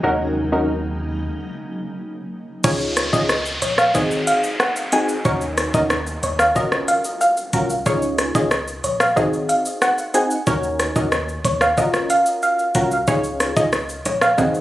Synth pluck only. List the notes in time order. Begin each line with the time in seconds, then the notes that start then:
2.64 C#5
3.13 D#5
3.62 C#5
3.78 F5
3.95 D#5
4.27 F5
4.60 F#5
4.93 G#5
5.25 C#5
5.74 D#5
6.24 C#5
6.39 F5
6.56 D#5
6.88 F5
7.21 F5
7.86 C#5
8.35 D#5
8.84 C#5
9.00 F5
9.16 D#5
9.49 F5
9.82 F#5
10.15 G#5
10.47 C#5
10.96 D#5
11.45 C#5
11.61 F5
11.78 D#5
12.10 F5
12.43 F5
13.08 C#5
13.57 D#5
14.06 C#5
14.22 F5
14.38 D#5